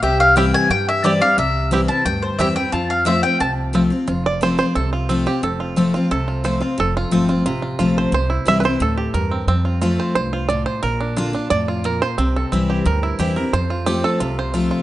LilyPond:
<<
  \new Staff \with { instrumentName = "Mandolin" } { \time 4/4 \key f \major \tempo 4 = 178 e''8 f''8 g''8 aes''8 g''8 e''8 d''8 f''8 | e''4 r8 a''8 g''8 c''8 e''8 g''8 | a''8 f''8 e''8 g''8 a''8 r4. | r1 |
r1 | r1 | r1 | r1 |
r1 | r1 | r1 | }
  \new Staff \with { instrumentName = "Resonator guitar played with a steel bar" } { \time 4/4 \key f \major g'1~ | g'1 | f'2.~ f'8 r8 | r1 |
r1 | r1 | r1 | r1 |
r1 | r1 | r1 | }
  \new Staff \with { instrumentName = "Five-string banjo" } { \time 4/4 \key f \major << { r4 <c' e' g'>8 r4. <c' e' g'>8 r8 | r4 <c' e' g'>8 r4. <c' e' g'>8 r8 | r4 <c' f'>8 r4. <c' f'>8 r8 | r8 d''8 c''8 c''8 a'4. g'8 |
a'4 r4 a'4 c''4 | a'8 f'2~ f'8 r8 c''8 | c''4 e''16. b'32 c''8 a'4 r4 | r4. c''8 c''4 d''8 c''8 |
bes'4 r4 d''4 bes'8 c''8~ | c''8 a'8 r2. | c''4 g'8 a'4 c''8 r4 | } \\ { r1 | r1 | r1 | f'4. r4 f'8 c'4~ |
c'8 f'8 c'8 f'4 f'4 f'8~ | f'4 c'8 f'8 f'8 f'8 f'4 | r8 e'4. r8 g'8 bes'8 c'8 | c'8 f'8 f'4. f'4. |
r8 d'8 f'8 d'4 f'4. | c'4 c'8 g'8 bes'8 e'8 g'8 bes'8 | r8 f'4. f'4 f'8 f'8 | } >> }
  \new Staff \with { instrumentName = "Steel-string acoustic guitar" } { \time 4/4 \key f \major << { r4 <e g c' e'>4 r4 <e g c' e'>8 <c' e'>8 | r4 <e g c' e'>8 <c' e'>8 r4 <e g c' e'>8 <c' e'>8 | r4 <f a c' f'>8 <c' f'>8 r4 <f a c' f'>8 <c' f'>8 | r4 <f a c' f'>8 <c' f'>8 r4 <f a c' f'>8 <c' f'>8 |
r4 <f a c' f'>8 <c' f'>8 r4 <f a c' f'>8 <c' f'>8 | r4 <f a c' f'>8 <c' f'>8 r4 <f a c' f'>4 | r4 <e g c' e'>8 <c' e'>8 r2 | r4 <f a c' f'>4 r2 |
r4 <d bes d' f'>8 <d' f'>8 r2 | r4 <e g c' e'>4 r4 <e g c' e'>8 <c' e'>8 | r4 <f a c' f'>4 r4 <f a c' f'>4 | } \\ { c2 g,2 | c2 g,2 | f,2 c2 | f,2 c2 |
f,2 c2 | f,2 c2 | c2 a,4 g,4 | f,2 g,4 a,4 |
bes,2 a,4 bes,4 | c2 g,2 | f,2 c2 | } >> }
  \new Staff \with { instrumentName = "Upright bass" } { \clef bass \time 4/4 \key f \major c,2 g,2 | c,2 d,4 e,4 | f,2 c,2 | f,,2 c,2 |
f,,2 c,2 | f,,4 g,,4 a,,4 bes,,4 | c,4 c,4 d,4 e,4 | f,2 c,2 |
bes,,2 f,2 | c,4 c,4 d,4 e,4 | f,2 c,2 | }
>>